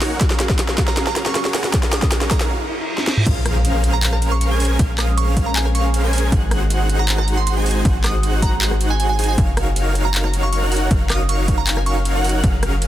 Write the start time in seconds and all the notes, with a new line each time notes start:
Already playing: F#2 C#3 A#4 F5 C#6, riser
0.02 D#4 F#4 A#4 C#5 F#5, snare, open hi-hat
0.21 C#4 F#4 G#4 A#4 F5, kick, snare, closed hi-hat
0.30 snare
0.40 snare, closed hi-hat
0.49 kick, snare
0.59 snare, closed hi-hat
0.69 snare
0.78 C#4 F#4 G#4 A#4 F5, kick, snare, closed hi-hat
0.88 A#5, snare
0.97 snare, closed hi-hat
1.07 A#5, snare
1.16 snare, closed hi-hat
1.26 C#6, snare
1.35 C#6, snare, closed hi-hat
1.45 snare
1.54 C#4 F#4 G#4 A#4 F#5, snare, open hi-hat
1.64 snare
1.73 C#4 F#4 G#4 A#4 F5, kick, snare, closed hi-hat
1.83 snare
1.93 D#6, snare, closed hi-hat
2.02 kick, snare
2.12 snare, closed hi-hat
2.21 snare
2.31 C#4 F#4 G#4 A#4 F5 A#5, kick, snare, closed hi-hat
2.41 snare
2.50 reverse cymbal
2.98 snare
3.07 snare
3.17 mid tom
3.26 A#1 G#3 A#3 C#4 G#4 A#4 C5 F5, kick, closed hi-hat, crash, impact
3.46 cross-stick, closed hi-hat
3.65 closed hi-hat
3.84 C#4 G#4 A#4 C5 F5, closed hi-hat
3.93 A#5
4.03 clap, closed hi-hat
4.13 A#5, cross-stick
4.22 closed hi-hat
4.32 C#6
4.41 C#6, closed hi-hat
4.51 C#4 G#4 A#4 C5 G#5
4.60 open hi-hat
4.65 closed hi-hat
4.79 A#1 C#4 G#4 A#4 C5 F5, kick, closed hi-hat
4.98 D#6, cross-stick, clap, closed hi-hat
5.18 C#6, closed hi-hat
5.37 C#4 G#4 A#4 C5 F5, kick, closed hi-hat
5.46 A#5
5.56 G#5, clap, closed hi-hat
5.65 G#5, cross-stick
5.75 C#6, closed hi-hat
5.94 closed hi-hat
6.04 C#4 G#4 A#4 C5 G#5
6.13 open hi-hat
6.18 closed hi-hat
6.32 G#1 C4 D#4 F#4 G#4 C5 F#5, kick, closed hi-hat
6.51 cross-stick, closed hi-hat
6.70 closed hi-hat
6.89 D#4 F#4 G#4 C5 F#5, closed hi-hat
6.99 A#5
7.09 clap, closed hi-hat
7.18 A#5, cross-stick
7.28 closed hi-hat
7.37 C6
7.47 C6, closed hi-hat
7.56 D#4 F#4 G#4 C5 G#5
7.66 open hi-hat
7.71 closed hi-hat
7.85 G#1 D#4 F#4 G#4 C5 F#5, kick, closed hi-hat
8.04 D#6, cross-stick, clap, closed hi-hat
8.23 closed hi-hat
8.42 D#4 F#4 G#4 C5 F#5 A#5, kick, closed hi-hat
8.62 clap, closed hi-hat
8.71 cross-stick
8.81 closed hi-hat
8.90 G#5
9.00 G#5, closed hi-hat
9.09 G#5
9.19 D#4 F#4 G#4 C5 G#5, open hi-hat
9.24 closed hi-hat
9.28 G#5
9.38 F#1 F#3 C#4 D#4 F#4 A#4 C#5 F5, kick, closed hi-hat
9.57 cross-stick, closed hi-hat
9.76 closed hi-hat
9.95 D#4 F#4 A#4 C#5 F5, closed hi-hat
10.05 A#5
10.14 clap, closed hi-hat
10.24 A#5, cross-stick
10.33 closed hi-hat
10.43 C#6
10.53 C#6, closed hi-hat
10.62 D#4 F#4 A#4 C#5 F#5
10.72 open hi-hat
10.77 closed hi-hat
10.91 F#1 D#4 F#4 A#4 C#5 F5, kick, closed hi-hat
11.10 D#6, cross-stick, clap, closed hi-hat
11.29 C#6, closed hi-hat
11.48 D#4 F#4 A#4 C#5 F5, kick, closed hi-hat
11.58 A#5
11.67 G#5, clap, closed hi-hat
11.77 G#5, cross-stick
11.86 C#6, closed hi-hat
12.05 closed hi-hat
12.15 D#4 F#4 A#4 C#5 F#5
12.24 open hi-hat
12.29 closed hi-hat
12.44 F#1 C#4 F#4 G#4 A#4 F5, kick, closed hi-hat
12.63 cross-stick, closed hi-hat
12.82 closed hi-hat